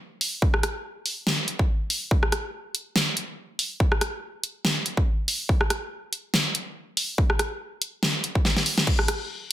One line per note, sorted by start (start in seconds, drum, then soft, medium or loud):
0.21 open hi-hat medium
0.42 kick loud
0.54 cross-stick medium
0.63 cross-stick medium
0.63 closed hi-hat medium
1.06 open hi-hat medium
1.27 snare loud
1.48 closed hi-hat medium
1.59 kick loud
1.90 open hi-hat medium
2.11 kick loud
2.23 cross-stick medium
2.32 cross-stick medium
2.32 closed hi-hat medium
2.75 closed hi-hat medium
2.96 snare loud
3.17 closed hi-hat medium
3.59 open hi-hat medium
3.80 kick loud
3.92 cross-stick medium
4.01 cross-stick medium
4.01 closed hi-hat medium
4.43 closed hi-hat medium
4.65 snare loud
4.86 closed hi-hat medium
4.97 kick loud
5.28 open hi-hat loud
5.49 kick loud
5.61 cross-stick medium
5.70 cross-stick medium
5.70 closed hi-hat medium
6.13 closed hi-hat medium
6.34 snare loud
6.55 closed hi-hat medium
6.97 open hi-hat loud
7.18 kick loud
7.30 cross-stick medium
7.39 cross-stick medium
7.39 closed hi-hat medium
7.82 closed hi-hat medium
8.03 snare loud
8.24 closed hi-hat medium
8.35 kick loud
8.45 snare medium
8.56 snare medium
8.66 open hi-hat loud
8.78 snare medium
8.87 kick loud
8.87 crash medium
8.99 cross-stick medium
9.08 cross-stick medium
9.08 closed hi-hat medium